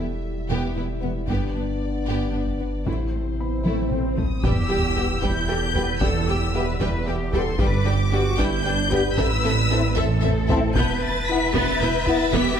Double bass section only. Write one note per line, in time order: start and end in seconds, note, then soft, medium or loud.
0.50 0.58 E1 medium
0.76 0.84 E1 soft
1.03 1.11 E1 soft
1.29 1.37 G1 medium
1.55 1.63 G1 medium
2.07 2.15 G1 medium
2.34 2.42 G1 soft
2.61 2.69 G1 soft
2.87 2.95 A1 soft
3.13 3.21 A1 soft
3.65 3.73 A1 soft
3.92 4.00 A1 soft
4.19 4.27 A1 soft
4.45 5.14 E2 medium
5.23 5.93 E2 medium
6.02 6.72 E2 medium
6.80 7.51 E2 medium
7.60 8.30 G1 medium
8.39 9.09 G1 medium
9.18 9.88 A1 loud
9.97 10.67 A1 loud
10.76 10.84 E1 loud
11.55 11.63 E1 loud
11.82 11.90 E1 medium
12.34 12.42 E1 loud